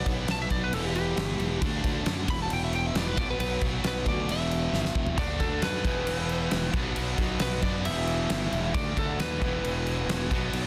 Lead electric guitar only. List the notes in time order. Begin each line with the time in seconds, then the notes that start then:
0.31 A5
0.42 E5
0.51 D5
0.64 B4
0.74 A4
0.85 G4
0.96 G4
2.30 B5
2.42 A5
2.53 G5
2.64 E5
2.75 G5
2.86 E5
2.96 D5
3.08 B4
3.18 D5
3.30 B4
3.40 B4
3.87 B4
4.08 D5
4.32 E5
5.19 D5
5.40 A4
5.63 B4
7.42 B4
7.63 D5
7.85 E5
8.74 D5
8.99 A4
9.20 B4